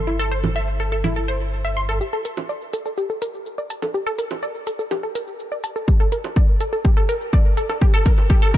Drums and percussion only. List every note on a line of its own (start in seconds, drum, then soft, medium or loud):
0.44 low conga medium
1.04 low conga medium
2.01 shaker soft
2.13 shaker soft
2.25 closed hi-hat loud
2.25 shaker medium
2.37 low conga medium
2.37 shaker soft
2.49 shaker soft
2.61 shaker soft
2.73 closed hi-hat medium
2.73 shaker medium
2.86 shaker soft
2.98 shaker soft
3.10 shaker soft
3.22 closed hi-hat loud
3.22 shaker medium
3.34 shaker soft
3.46 shaker soft
3.58 shaker soft
3.70 closed hi-hat loud
3.70 shaker medium
3.82 low conga medium
3.82 shaker soft
3.94 shaker soft
4.07 shaker soft
4.19 closed hi-hat loud
4.19 shaker medium
4.31 low conga medium
4.31 shaker soft
4.43 shaker soft
4.55 shaker soft
4.67 closed hi-hat medium
4.67 shaker medium
4.79 shaker soft
4.91 low conga medium
4.91 shaker soft
5.03 shaker soft
5.15 closed hi-hat loud
5.15 shaker medium
5.28 shaker soft
5.40 shaker soft
5.52 shaker soft
5.64 closed hi-hat loud
5.64 shaker medium
5.76 shaker soft
5.88 kick loud
5.88 shaker soft
6.00 shaker soft
6.12 closed hi-hat loud
6.12 shaker medium
6.24 low conga medium
6.24 shaker soft
6.36 kick loud
6.36 shaker soft
6.49 shaker soft
6.61 closed hi-hat loud
6.61 shaker medium
6.73 shaker soft
6.85 kick loud
6.85 shaker soft
6.97 shaker soft
7.09 closed hi-hat loud
7.09 shaker medium
7.21 shaker soft
7.33 kick loud
7.33 shaker soft
7.45 shaker soft
7.57 closed hi-hat loud
7.57 shaker medium
7.70 low conga medium
7.70 shaker soft
7.81 kick loud
7.81 shaker soft
7.94 shaker soft
8.06 kick loud
8.06 closed hi-hat loud
8.06 shaker medium
8.18 low conga medium
8.18 shaker soft
8.30 kick loud
8.30 shaker soft
8.42 shaker soft
8.54 kick loud
8.54 closed hi-hat loud
8.54 shaker medium